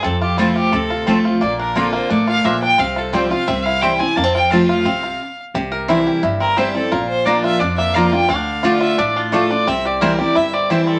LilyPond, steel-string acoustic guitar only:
\new Staff \with { instrumentName = "Steel-string acoustic guitar" } { \time 4/4 \key c \mixolydian \tempo 4 = 174 << { r4 <f a c' f'>4 r4 <f a c' f'>4 | r4 <d bes c' f'>4 r2 | r4 <f g c' f'>8 <c' f'>8 r4 <e g c' e'>8 <c' e'>8 | r4 <f a c' f'>4 r2 |
r4 <e g c' e'>4 r4 <e g c' e'>8 <c' e'>8 | r4 <f bes d' f'>4 r4 <f bes d' f'>8 <d' f'>8 | r4 <d a d' f'>4 r4 <d a d' f'>8 <d' f'>8 | r4 <e g c' e'>8 <c' e'>8 r4 <e g c' e'>4 | } \\ { f,2 c2 | bes,2 a4 bes,4 | c2 c2 | f,2 c4 r4 |
c2 g,2 | bes,2 f,2 | d2 a,2 | c2 g,2 | } >> }